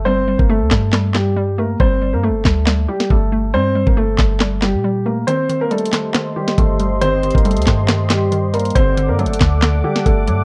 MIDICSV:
0, 0, Header, 1, 6, 480
1, 0, Start_track
1, 0, Key_signature, -2, "minor"
1, 0, Tempo, 434783
1, 65, Time_signature, 4, 2, 24, 8
1, 11526, End_track
2, 0, Start_track
2, 0, Title_t, "Analog synth pad"
2, 0, Program_c, 0, 89
2, 5825, Note_on_c, 0, 67, 77
2, 5825, Note_on_c, 0, 72, 72
2, 5825, Note_on_c, 0, 75, 76
2, 5825, Note_on_c, 0, 84, 86
2, 9627, Note_off_c, 0, 67, 0
2, 9627, Note_off_c, 0, 72, 0
2, 9627, Note_off_c, 0, 75, 0
2, 9627, Note_off_c, 0, 84, 0
2, 9665, Note_on_c, 0, 69, 79
2, 9665, Note_on_c, 0, 74, 72
2, 9665, Note_on_c, 0, 78, 74
2, 9665, Note_on_c, 0, 86, 91
2, 11526, Note_off_c, 0, 69, 0
2, 11526, Note_off_c, 0, 74, 0
2, 11526, Note_off_c, 0, 78, 0
2, 11526, Note_off_c, 0, 86, 0
2, 11526, End_track
3, 0, Start_track
3, 0, Title_t, "Grand piano"
3, 0, Program_c, 1, 0
3, 57, Note_on_c, 1, 72, 106
3, 66, Note_on_c, 1, 60, 89
3, 406, Note_off_c, 1, 72, 0
3, 411, Note_off_c, 1, 60, 0
3, 430, Note_on_c, 1, 70, 74
3, 439, Note_on_c, 1, 58, 60
3, 528, Note_off_c, 1, 70, 0
3, 533, Note_off_c, 1, 58, 0
3, 548, Note_on_c, 1, 69, 85
3, 557, Note_on_c, 1, 57, 66
3, 1224, Note_off_c, 1, 69, 0
3, 1228, Note_off_c, 1, 57, 0
3, 1264, Note_on_c, 1, 67, 75
3, 1273, Note_on_c, 1, 55, 60
3, 1716, Note_off_c, 1, 67, 0
3, 1721, Note_off_c, 1, 55, 0
3, 1751, Note_on_c, 1, 70, 80
3, 1760, Note_on_c, 1, 58, 62
3, 1954, Note_off_c, 1, 70, 0
3, 1959, Note_off_c, 1, 58, 0
3, 1990, Note_on_c, 1, 72, 106
3, 1999, Note_on_c, 1, 60, 81
3, 2333, Note_off_c, 1, 72, 0
3, 2338, Note_off_c, 1, 60, 0
3, 2356, Note_on_c, 1, 70, 89
3, 2365, Note_on_c, 1, 58, 70
3, 2451, Note_off_c, 1, 70, 0
3, 2456, Note_off_c, 1, 58, 0
3, 2468, Note_on_c, 1, 69, 78
3, 2477, Note_on_c, 1, 57, 64
3, 3144, Note_off_c, 1, 69, 0
3, 3148, Note_off_c, 1, 57, 0
3, 3183, Note_on_c, 1, 67, 77
3, 3192, Note_on_c, 1, 55, 60
3, 3390, Note_off_c, 1, 67, 0
3, 3395, Note_off_c, 1, 55, 0
3, 3428, Note_on_c, 1, 69, 80
3, 3437, Note_on_c, 1, 57, 60
3, 3878, Note_off_c, 1, 69, 0
3, 3883, Note_off_c, 1, 57, 0
3, 3906, Note_on_c, 1, 72, 117
3, 3914, Note_on_c, 1, 60, 93
3, 4251, Note_off_c, 1, 72, 0
3, 4255, Note_off_c, 1, 60, 0
3, 4273, Note_on_c, 1, 70, 81
3, 4282, Note_on_c, 1, 58, 58
3, 4370, Note_off_c, 1, 70, 0
3, 4375, Note_off_c, 1, 58, 0
3, 4387, Note_on_c, 1, 69, 85
3, 4396, Note_on_c, 1, 57, 63
3, 5063, Note_off_c, 1, 69, 0
3, 5068, Note_off_c, 1, 57, 0
3, 5110, Note_on_c, 1, 67, 75
3, 5119, Note_on_c, 1, 55, 58
3, 5559, Note_off_c, 1, 67, 0
3, 5564, Note_off_c, 1, 55, 0
3, 5581, Note_on_c, 1, 70, 78
3, 5590, Note_on_c, 1, 58, 64
3, 5789, Note_off_c, 1, 70, 0
3, 5794, Note_off_c, 1, 58, 0
3, 5819, Note_on_c, 1, 72, 107
3, 5828, Note_on_c, 1, 60, 84
3, 6167, Note_off_c, 1, 72, 0
3, 6172, Note_off_c, 1, 60, 0
3, 6196, Note_on_c, 1, 70, 97
3, 6205, Note_on_c, 1, 58, 68
3, 6291, Note_off_c, 1, 70, 0
3, 6296, Note_off_c, 1, 58, 0
3, 6301, Note_on_c, 1, 69, 79
3, 6309, Note_on_c, 1, 57, 63
3, 6980, Note_off_c, 1, 69, 0
3, 6984, Note_off_c, 1, 57, 0
3, 7024, Note_on_c, 1, 67, 79
3, 7032, Note_on_c, 1, 55, 63
3, 7230, Note_off_c, 1, 67, 0
3, 7235, Note_off_c, 1, 55, 0
3, 7261, Note_on_c, 1, 69, 83
3, 7270, Note_on_c, 1, 57, 67
3, 7714, Note_off_c, 1, 69, 0
3, 7719, Note_off_c, 1, 57, 0
3, 7744, Note_on_c, 1, 72, 115
3, 7753, Note_on_c, 1, 60, 88
3, 8090, Note_off_c, 1, 72, 0
3, 8094, Note_off_c, 1, 60, 0
3, 8110, Note_on_c, 1, 70, 79
3, 8119, Note_on_c, 1, 58, 63
3, 8208, Note_off_c, 1, 70, 0
3, 8213, Note_off_c, 1, 58, 0
3, 8226, Note_on_c, 1, 69, 79
3, 8235, Note_on_c, 1, 57, 62
3, 8902, Note_off_c, 1, 69, 0
3, 8907, Note_off_c, 1, 57, 0
3, 8944, Note_on_c, 1, 67, 76
3, 8953, Note_on_c, 1, 55, 61
3, 9396, Note_off_c, 1, 67, 0
3, 9401, Note_off_c, 1, 55, 0
3, 9421, Note_on_c, 1, 70, 81
3, 9430, Note_on_c, 1, 58, 59
3, 9629, Note_off_c, 1, 70, 0
3, 9634, Note_off_c, 1, 58, 0
3, 9662, Note_on_c, 1, 72, 111
3, 9671, Note_on_c, 1, 60, 83
3, 10009, Note_off_c, 1, 72, 0
3, 10014, Note_off_c, 1, 60, 0
3, 10032, Note_on_c, 1, 70, 89
3, 10041, Note_on_c, 1, 58, 67
3, 10129, Note_off_c, 1, 70, 0
3, 10134, Note_off_c, 1, 58, 0
3, 10143, Note_on_c, 1, 69, 79
3, 10152, Note_on_c, 1, 57, 63
3, 10821, Note_off_c, 1, 69, 0
3, 10825, Note_off_c, 1, 57, 0
3, 10862, Note_on_c, 1, 67, 81
3, 10871, Note_on_c, 1, 55, 65
3, 11069, Note_off_c, 1, 67, 0
3, 11074, Note_off_c, 1, 55, 0
3, 11101, Note_on_c, 1, 69, 83
3, 11110, Note_on_c, 1, 57, 63
3, 11526, Note_off_c, 1, 57, 0
3, 11526, Note_off_c, 1, 69, 0
3, 11526, End_track
4, 0, Start_track
4, 0, Title_t, "Synth pluck"
4, 0, Program_c, 2, 84
4, 0, Note_on_c, 2, 57, 80
4, 65, Note_on_c, 2, 55, 99
4, 293, Note_off_c, 2, 55, 0
4, 307, Note_on_c, 2, 55, 82
4, 533, Note_off_c, 2, 57, 0
4, 546, Note_on_c, 2, 57, 92
4, 773, Note_off_c, 2, 55, 0
4, 786, Note_on_c, 2, 55, 82
4, 1013, Note_off_c, 2, 55, 0
4, 1026, Note_on_c, 2, 55, 93
4, 1253, Note_off_c, 2, 55, 0
4, 1266, Note_on_c, 2, 55, 75
4, 1492, Note_off_c, 2, 55, 0
4, 1506, Note_on_c, 2, 55, 87
4, 1733, Note_off_c, 2, 57, 0
4, 1746, Note_on_c, 2, 57, 84
4, 1973, Note_off_c, 2, 55, 0
4, 1986, Note_on_c, 2, 55, 110
4, 2213, Note_off_c, 2, 55, 0
4, 2226, Note_on_c, 2, 55, 79
4, 2453, Note_off_c, 2, 57, 0
4, 2466, Note_on_c, 2, 57, 86
4, 2693, Note_off_c, 2, 55, 0
4, 2706, Note_on_c, 2, 55, 78
4, 2933, Note_off_c, 2, 55, 0
4, 2946, Note_on_c, 2, 55, 88
4, 3172, Note_off_c, 2, 55, 0
4, 3186, Note_on_c, 2, 55, 79
4, 3412, Note_off_c, 2, 55, 0
4, 3426, Note_on_c, 2, 55, 86
4, 3653, Note_off_c, 2, 57, 0
4, 3666, Note_on_c, 2, 57, 81
4, 3892, Note_off_c, 2, 55, 0
4, 3905, Note_on_c, 2, 55, 96
4, 4132, Note_off_c, 2, 55, 0
4, 4145, Note_on_c, 2, 55, 83
4, 4372, Note_off_c, 2, 57, 0
4, 4385, Note_on_c, 2, 57, 94
4, 4612, Note_off_c, 2, 55, 0
4, 4625, Note_on_c, 2, 55, 70
4, 4852, Note_off_c, 2, 55, 0
4, 4865, Note_on_c, 2, 55, 87
4, 5092, Note_off_c, 2, 55, 0
4, 5106, Note_on_c, 2, 55, 74
4, 5332, Note_off_c, 2, 55, 0
4, 5346, Note_on_c, 2, 55, 81
4, 5572, Note_off_c, 2, 57, 0
4, 5585, Note_on_c, 2, 57, 78
4, 5825, Note_off_c, 2, 55, 0
4, 5825, Note_off_c, 2, 57, 0
4, 5825, Note_on_c, 2, 51, 98
4, 6051, Note_off_c, 2, 51, 0
4, 6065, Note_on_c, 2, 51, 82
4, 6306, Note_on_c, 2, 55, 92
4, 6532, Note_off_c, 2, 51, 0
4, 6545, Note_on_c, 2, 51, 79
4, 6771, Note_off_c, 2, 51, 0
4, 6785, Note_on_c, 2, 51, 90
4, 7012, Note_off_c, 2, 51, 0
4, 7026, Note_on_c, 2, 51, 70
4, 7252, Note_off_c, 2, 51, 0
4, 7265, Note_on_c, 2, 51, 80
4, 7493, Note_off_c, 2, 55, 0
4, 7506, Note_on_c, 2, 55, 75
4, 7732, Note_off_c, 2, 51, 0
4, 7745, Note_on_c, 2, 51, 109
4, 7972, Note_off_c, 2, 51, 0
4, 7985, Note_on_c, 2, 51, 79
4, 8212, Note_off_c, 2, 55, 0
4, 8226, Note_on_c, 2, 55, 81
4, 8452, Note_off_c, 2, 51, 0
4, 8465, Note_on_c, 2, 51, 82
4, 8692, Note_off_c, 2, 51, 0
4, 8705, Note_on_c, 2, 51, 94
4, 8932, Note_off_c, 2, 51, 0
4, 8945, Note_on_c, 2, 51, 75
4, 9172, Note_off_c, 2, 51, 0
4, 9185, Note_on_c, 2, 51, 80
4, 9411, Note_off_c, 2, 55, 0
4, 9425, Note_on_c, 2, 55, 85
4, 9665, Note_off_c, 2, 51, 0
4, 9665, Note_off_c, 2, 55, 0
4, 9665, Note_on_c, 2, 50, 105
4, 9892, Note_off_c, 2, 50, 0
4, 9905, Note_on_c, 2, 50, 82
4, 10145, Note_on_c, 2, 54, 96
4, 10372, Note_off_c, 2, 50, 0
4, 10385, Note_on_c, 2, 50, 85
4, 10611, Note_off_c, 2, 50, 0
4, 10624, Note_on_c, 2, 50, 90
4, 10852, Note_off_c, 2, 50, 0
4, 10865, Note_on_c, 2, 50, 78
4, 11092, Note_off_c, 2, 50, 0
4, 11105, Note_on_c, 2, 50, 84
4, 11332, Note_off_c, 2, 54, 0
4, 11345, Note_on_c, 2, 54, 77
4, 11526, Note_off_c, 2, 50, 0
4, 11526, Note_off_c, 2, 54, 0
4, 11526, End_track
5, 0, Start_track
5, 0, Title_t, "808-style bass"
5, 0, Program_c, 3, 38
5, 0, Note_on_c, 3, 31, 108
5, 398, Note_off_c, 3, 31, 0
5, 433, Note_on_c, 3, 31, 109
5, 673, Note_on_c, 3, 38, 101
5, 689, Note_off_c, 3, 31, 0
5, 780, Note_off_c, 3, 38, 0
5, 786, Note_on_c, 3, 43, 102
5, 1941, Note_off_c, 3, 43, 0
5, 1986, Note_on_c, 3, 31, 106
5, 2352, Note_on_c, 3, 43, 98
5, 2369, Note_off_c, 3, 31, 0
5, 2529, Note_on_c, 3, 31, 99
5, 2546, Note_off_c, 3, 43, 0
5, 2697, Note_off_c, 3, 31, 0
5, 2706, Note_on_c, 3, 38, 106
5, 3166, Note_off_c, 3, 38, 0
5, 3425, Note_on_c, 3, 31, 111
5, 3905, Note_on_c, 3, 43, 101
5, 3922, Note_off_c, 3, 31, 0
5, 4254, Note_off_c, 3, 43, 0
5, 4273, Note_on_c, 3, 31, 103
5, 4611, Note_off_c, 3, 31, 0
5, 4626, Note_on_c, 3, 31, 109
5, 5232, Note_on_c, 3, 46, 100
5, 5249, Note_off_c, 3, 31, 0
5, 5796, Note_off_c, 3, 46, 0
5, 7265, Note_on_c, 3, 31, 111
5, 8079, Note_off_c, 3, 31, 0
5, 8113, Note_on_c, 3, 31, 104
5, 8352, Note_on_c, 3, 38, 96
5, 8369, Note_off_c, 3, 31, 0
5, 8460, Note_off_c, 3, 38, 0
5, 8465, Note_on_c, 3, 43, 104
5, 9621, Note_off_c, 3, 43, 0
5, 9665, Note_on_c, 3, 31, 112
5, 10032, Note_on_c, 3, 43, 98
5, 10049, Note_off_c, 3, 31, 0
5, 10209, Note_on_c, 3, 31, 100
5, 10225, Note_off_c, 3, 43, 0
5, 10376, Note_off_c, 3, 31, 0
5, 10385, Note_on_c, 3, 38, 105
5, 10846, Note_off_c, 3, 38, 0
5, 11105, Note_on_c, 3, 31, 104
5, 11345, Note_on_c, 3, 43, 101
5, 11362, Note_off_c, 3, 31, 0
5, 11526, Note_off_c, 3, 43, 0
5, 11526, End_track
6, 0, Start_track
6, 0, Title_t, "Drums"
6, 433, Note_on_c, 9, 36, 93
6, 543, Note_off_c, 9, 36, 0
6, 784, Note_on_c, 9, 39, 74
6, 785, Note_on_c, 9, 36, 88
6, 786, Note_on_c, 9, 38, 96
6, 895, Note_off_c, 9, 39, 0
6, 896, Note_off_c, 9, 36, 0
6, 897, Note_off_c, 9, 38, 0
6, 1023, Note_on_c, 9, 39, 92
6, 1026, Note_on_c, 9, 38, 117
6, 1134, Note_off_c, 9, 39, 0
6, 1136, Note_off_c, 9, 38, 0
6, 1263, Note_on_c, 9, 39, 78
6, 1265, Note_on_c, 9, 38, 98
6, 1373, Note_off_c, 9, 39, 0
6, 1375, Note_off_c, 9, 38, 0
6, 1986, Note_on_c, 9, 36, 114
6, 2096, Note_off_c, 9, 36, 0
6, 2705, Note_on_c, 9, 39, 77
6, 2706, Note_on_c, 9, 36, 90
6, 2707, Note_on_c, 9, 38, 93
6, 2815, Note_off_c, 9, 39, 0
6, 2816, Note_off_c, 9, 36, 0
6, 2817, Note_off_c, 9, 38, 0
6, 2943, Note_on_c, 9, 39, 95
6, 2946, Note_on_c, 9, 38, 119
6, 3054, Note_off_c, 9, 39, 0
6, 3056, Note_off_c, 9, 38, 0
6, 3313, Note_on_c, 9, 38, 70
6, 3423, Note_off_c, 9, 38, 0
6, 3425, Note_on_c, 9, 36, 102
6, 3535, Note_off_c, 9, 36, 0
6, 4273, Note_on_c, 9, 36, 94
6, 4383, Note_off_c, 9, 36, 0
6, 4624, Note_on_c, 9, 39, 75
6, 4626, Note_on_c, 9, 36, 88
6, 4627, Note_on_c, 9, 38, 96
6, 4735, Note_off_c, 9, 39, 0
6, 4736, Note_off_c, 9, 36, 0
6, 4737, Note_off_c, 9, 38, 0
6, 4863, Note_on_c, 9, 39, 94
6, 4866, Note_on_c, 9, 38, 122
6, 4974, Note_off_c, 9, 39, 0
6, 4976, Note_off_c, 9, 38, 0
6, 5103, Note_on_c, 9, 39, 75
6, 5105, Note_on_c, 9, 38, 96
6, 5213, Note_off_c, 9, 39, 0
6, 5215, Note_off_c, 9, 38, 0
6, 5826, Note_on_c, 9, 42, 90
6, 5936, Note_off_c, 9, 42, 0
6, 6067, Note_on_c, 9, 42, 74
6, 6178, Note_off_c, 9, 42, 0
6, 6306, Note_on_c, 9, 42, 50
6, 6386, Note_off_c, 9, 42, 0
6, 6386, Note_on_c, 9, 42, 65
6, 6466, Note_off_c, 9, 42, 0
6, 6466, Note_on_c, 9, 42, 86
6, 6545, Note_on_c, 9, 39, 77
6, 6546, Note_off_c, 9, 42, 0
6, 6546, Note_on_c, 9, 42, 78
6, 6547, Note_on_c, 9, 38, 98
6, 6655, Note_off_c, 9, 39, 0
6, 6657, Note_off_c, 9, 38, 0
6, 6657, Note_off_c, 9, 42, 0
6, 6784, Note_on_c, 9, 39, 92
6, 6785, Note_on_c, 9, 42, 77
6, 6786, Note_on_c, 9, 38, 121
6, 6894, Note_off_c, 9, 39, 0
6, 6895, Note_off_c, 9, 42, 0
6, 6896, Note_off_c, 9, 38, 0
6, 7152, Note_on_c, 9, 38, 70
6, 7263, Note_off_c, 9, 38, 0
6, 7265, Note_on_c, 9, 36, 103
6, 7265, Note_on_c, 9, 42, 76
6, 7375, Note_off_c, 9, 36, 0
6, 7376, Note_off_c, 9, 42, 0
6, 7503, Note_on_c, 9, 42, 75
6, 7614, Note_off_c, 9, 42, 0
6, 7746, Note_on_c, 9, 42, 84
6, 7856, Note_off_c, 9, 42, 0
6, 7985, Note_on_c, 9, 42, 42
6, 8065, Note_off_c, 9, 42, 0
6, 8065, Note_on_c, 9, 42, 59
6, 8113, Note_on_c, 9, 36, 99
6, 8145, Note_off_c, 9, 42, 0
6, 8145, Note_on_c, 9, 42, 75
6, 8223, Note_off_c, 9, 36, 0
6, 8226, Note_off_c, 9, 42, 0
6, 8226, Note_on_c, 9, 42, 65
6, 8289, Note_off_c, 9, 42, 0
6, 8289, Note_on_c, 9, 42, 66
6, 8353, Note_off_c, 9, 42, 0
6, 8353, Note_on_c, 9, 42, 71
6, 8409, Note_off_c, 9, 42, 0
6, 8409, Note_on_c, 9, 42, 69
6, 8464, Note_on_c, 9, 39, 77
6, 8465, Note_on_c, 9, 36, 88
6, 8466, Note_off_c, 9, 42, 0
6, 8466, Note_on_c, 9, 42, 75
6, 8467, Note_on_c, 9, 38, 95
6, 8575, Note_off_c, 9, 39, 0
6, 8576, Note_off_c, 9, 36, 0
6, 8577, Note_off_c, 9, 38, 0
6, 8577, Note_off_c, 9, 42, 0
6, 8703, Note_on_c, 9, 39, 93
6, 8704, Note_on_c, 9, 42, 73
6, 8705, Note_on_c, 9, 38, 117
6, 8814, Note_off_c, 9, 39, 0
6, 8815, Note_off_c, 9, 42, 0
6, 8816, Note_off_c, 9, 38, 0
6, 8943, Note_on_c, 9, 39, 76
6, 8945, Note_on_c, 9, 38, 95
6, 8945, Note_on_c, 9, 42, 89
6, 9053, Note_off_c, 9, 39, 0
6, 9055, Note_off_c, 9, 38, 0
6, 9055, Note_off_c, 9, 42, 0
6, 9185, Note_on_c, 9, 42, 76
6, 9296, Note_off_c, 9, 42, 0
6, 9425, Note_on_c, 9, 42, 67
6, 9489, Note_off_c, 9, 42, 0
6, 9489, Note_on_c, 9, 42, 65
6, 9552, Note_off_c, 9, 42, 0
6, 9552, Note_on_c, 9, 42, 65
6, 9609, Note_off_c, 9, 42, 0
6, 9609, Note_on_c, 9, 42, 63
6, 9665, Note_on_c, 9, 36, 113
6, 9666, Note_off_c, 9, 42, 0
6, 9666, Note_on_c, 9, 42, 88
6, 9776, Note_off_c, 9, 36, 0
6, 9776, Note_off_c, 9, 42, 0
6, 9907, Note_on_c, 9, 42, 74
6, 10018, Note_off_c, 9, 42, 0
6, 10145, Note_on_c, 9, 42, 48
6, 10225, Note_off_c, 9, 42, 0
6, 10225, Note_on_c, 9, 42, 65
6, 10305, Note_off_c, 9, 42, 0
6, 10305, Note_on_c, 9, 42, 85
6, 10384, Note_on_c, 9, 39, 78
6, 10385, Note_on_c, 9, 36, 90
6, 10386, Note_off_c, 9, 42, 0
6, 10386, Note_on_c, 9, 38, 100
6, 10386, Note_on_c, 9, 42, 75
6, 10495, Note_off_c, 9, 39, 0
6, 10496, Note_off_c, 9, 36, 0
6, 10496, Note_off_c, 9, 42, 0
6, 10497, Note_off_c, 9, 38, 0
6, 10623, Note_on_c, 9, 39, 98
6, 10624, Note_on_c, 9, 42, 73
6, 10625, Note_on_c, 9, 38, 116
6, 10733, Note_off_c, 9, 39, 0
6, 10734, Note_off_c, 9, 42, 0
6, 10736, Note_off_c, 9, 38, 0
6, 10992, Note_on_c, 9, 38, 68
6, 11103, Note_off_c, 9, 38, 0
6, 11105, Note_on_c, 9, 36, 102
6, 11105, Note_on_c, 9, 42, 76
6, 11215, Note_off_c, 9, 36, 0
6, 11216, Note_off_c, 9, 42, 0
6, 11343, Note_on_c, 9, 42, 78
6, 11454, Note_off_c, 9, 42, 0
6, 11526, End_track
0, 0, End_of_file